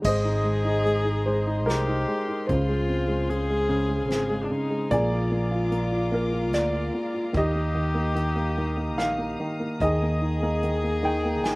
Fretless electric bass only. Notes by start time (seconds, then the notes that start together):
0.05 G#1
1.68 C2
2.49 C#2
4.10 G#1
4.91 A#1
6.53 D2
7.35 D#2
8.97 A#1
9.80 D#2
11.44 A#1